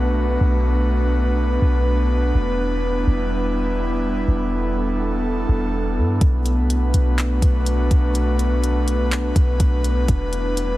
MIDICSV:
0, 0, Header, 1, 4, 480
1, 0, Start_track
1, 0, Key_signature, 1, "minor"
1, 0, Tempo, 483871
1, 405, Time_signature, 4, 2, 24, 8
1, 10688, End_track
2, 0, Start_track
2, 0, Title_t, "Analog synth pad"
2, 0, Program_c, 0, 89
2, 0, Note_on_c, 0, 57, 85
2, 0, Note_on_c, 0, 59, 74
2, 0, Note_on_c, 0, 62, 72
2, 0, Note_on_c, 0, 66, 74
2, 0, Note_on_c, 0, 71, 92
2, 2287, Note_off_c, 0, 57, 0
2, 2287, Note_off_c, 0, 66, 0
2, 2326, Note_on_c, 0, 64, 74
2, 2327, Note_on_c, 0, 55, 79
2, 4206, Note_off_c, 0, 71, 0
2, 4244, Note_on_c, 0, 69, 88
2, 6126, Note_off_c, 0, 62, 0
2, 6127, Note_off_c, 0, 55, 0
2, 6127, Note_off_c, 0, 64, 0
2, 6145, Note_off_c, 0, 69, 0
2, 6163, Note_on_c, 0, 57, 79
2, 6163, Note_on_c, 0, 62, 72
2, 6163, Note_on_c, 0, 71, 90
2, 6164, Note_on_c, 0, 66, 77
2, 9965, Note_off_c, 0, 57, 0
2, 9965, Note_off_c, 0, 62, 0
2, 9966, Note_off_c, 0, 66, 0
2, 9967, Note_off_c, 0, 59, 0
2, 10003, Note_on_c, 0, 59, 73
2, 10004, Note_on_c, 0, 55, 80
2, 10004, Note_on_c, 0, 62, 76
2, 10004, Note_on_c, 0, 64, 72
2, 10688, Note_off_c, 0, 55, 0
2, 10688, Note_off_c, 0, 59, 0
2, 10688, Note_off_c, 0, 62, 0
2, 10688, Note_off_c, 0, 64, 0
2, 10688, Note_off_c, 0, 71, 0
2, 10688, End_track
3, 0, Start_track
3, 0, Title_t, "808-style bass"
3, 0, Program_c, 1, 38
3, 0, Note_on_c, 1, 35, 102
3, 364, Note_off_c, 1, 35, 0
3, 405, Note_on_c, 1, 35, 108
3, 1565, Note_off_c, 1, 35, 0
3, 1605, Note_on_c, 1, 35, 97
3, 2296, Note_off_c, 1, 35, 0
3, 2326, Note_on_c, 1, 28, 104
3, 3017, Note_off_c, 1, 28, 0
3, 3046, Note_on_c, 1, 28, 106
3, 4206, Note_off_c, 1, 28, 0
3, 4245, Note_on_c, 1, 28, 110
3, 5405, Note_off_c, 1, 28, 0
3, 5444, Note_on_c, 1, 28, 103
3, 5924, Note_on_c, 1, 43, 100
3, 5939, Note_off_c, 1, 28, 0
3, 6152, Note_off_c, 1, 43, 0
3, 6163, Note_on_c, 1, 35, 104
3, 6524, Note_on_c, 1, 36, 97
3, 6539, Note_off_c, 1, 35, 0
3, 6704, Note_on_c, 1, 35, 99
3, 6718, Note_off_c, 1, 36, 0
3, 6875, Note_off_c, 1, 35, 0
3, 6885, Note_on_c, 1, 35, 105
3, 7345, Note_off_c, 1, 35, 0
3, 7364, Note_on_c, 1, 35, 105
3, 7825, Note_off_c, 1, 35, 0
3, 7846, Note_on_c, 1, 35, 105
3, 9246, Note_off_c, 1, 35, 0
3, 9284, Note_on_c, 1, 35, 101
3, 9514, Note_off_c, 1, 35, 0
3, 9523, Note_on_c, 1, 35, 108
3, 9984, Note_off_c, 1, 35, 0
3, 10004, Note_on_c, 1, 28, 108
3, 10688, Note_off_c, 1, 28, 0
3, 10688, End_track
4, 0, Start_track
4, 0, Title_t, "Drums"
4, 6163, Note_on_c, 9, 36, 116
4, 6163, Note_on_c, 9, 42, 75
4, 6262, Note_off_c, 9, 36, 0
4, 6262, Note_off_c, 9, 42, 0
4, 6405, Note_on_c, 9, 42, 64
4, 6504, Note_off_c, 9, 42, 0
4, 6647, Note_on_c, 9, 42, 78
4, 6746, Note_off_c, 9, 42, 0
4, 6885, Note_on_c, 9, 42, 77
4, 6984, Note_off_c, 9, 42, 0
4, 7124, Note_on_c, 9, 42, 63
4, 7130, Note_on_c, 9, 39, 111
4, 7224, Note_off_c, 9, 42, 0
4, 7229, Note_off_c, 9, 39, 0
4, 7363, Note_on_c, 9, 36, 101
4, 7365, Note_on_c, 9, 42, 91
4, 7462, Note_off_c, 9, 36, 0
4, 7464, Note_off_c, 9, 42, 0
4, 7603, Note_on_c, 9, 42, 82
4, 7702, Note_off_c, 9, 42, 0
4, 7846, Note_on_c, 9, 36, 94
4, 7846, Note_on_c, 9, 42, 62
4, 7946, Note_off_c, 9, 36, 0
4, 7946, Note_off_c, 9, 42, 0
4, 8085, Note_on_c, 9, 42, 74
4, 8184, Note_off_c, 9, 42, 0
4, 8325, Note_on_c, 9, 42, 60
4, 8425, Note_off_c, 9, 42, 0
4, 8567, Note_on_c, 9, 42, 76
4, 8666, Note_off_c, 9, 42, 0
4, 8805, Note_on_c, 9, 42, 75
4, 8905, Note_off_c, 9, 42, 0
4, 9044, Note_on_c, 9, 42, 65
4, 9050, Note_on_c, 9, 39, 112
4, 9144, Note_off_c, 9, 42, 0
4, 9149, Note_off_c, 9, 39, 0
4, 9284, Note_on_c, 9, 36, 98
4, 9285, Note_on_c, 9, 42, 83
4, 9383, Note_off_c, 9, 36, 0
4, 9384, Note_off_c, 9, 42, 0
4, 9522, Note_on_c, 9, 42, 85
4, 9523, Note_on_c, 9, 36, 97
4, 9622, Note_off_c, 9, 42, 0
4, 9623, Note_off_c, 9, 36, 0
4, 9765, Note_on_c, 9, 42, 64
4, 9865, Note_off_c, 9, 42, 0
4, 10004, Note_on_c, 9, 36, 111
4, 10004, Note_on_c, 9, 42, 74
4, 10103, Note_off_c, 9, 36, 0
4, 10103, Note_off_c, 9, 42, 0
4, 10244, Note_on_c, 9, 42, 60
4, 10343, Note_off_c, 9, 42, 0
4, 10487, Note_on_c, 9, 42, 76
4, 10586, Note_off_c, 9, 42, 0
4, 10688, End_track
0, 0, End_of_file